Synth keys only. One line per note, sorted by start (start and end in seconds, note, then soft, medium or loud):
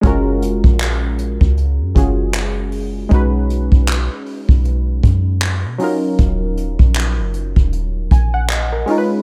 0.01 1.91 G#3 medium
0.01 1.91 C#4 medium
0.01 1.92 F4 medium
0.05 1.93 F#4 medium
0.05 1.94 A#4 medium
1.95 3.08 G#3 medium
1.95 3.09 C#4 medium
1.95 3.11 F4 medium
1.95 3.12 F#4 medium
1.95 3.12 G#4 medium
3.09 5.75 G#3 medium
3.09 5.76 C#4 medium
3.09 5.77 D#4 medium
3.13 5.77 F#4 medium
3.13 5.78 B4 medium
5.78 8.06 F#3 medium
5.78 8.07 C#4 medium
5.78 8.07 D#4 medium
5.82 8.08 F4 medium
5.82 8.09 A#4 medium
8.12 8.33 G#5 medium
8.34 8.49 F#5 medium
8.50 8.71 D#5 medium
8.72 8.90 A#4 medium
8.86 9.22 G#3 medium
8.86 9.22 C#4 medium
8.86 9.22 D#4 medium
8.90 9.22 F4 medium
8.90 8.97 A#4 medium
8.98 9.22 B4 medium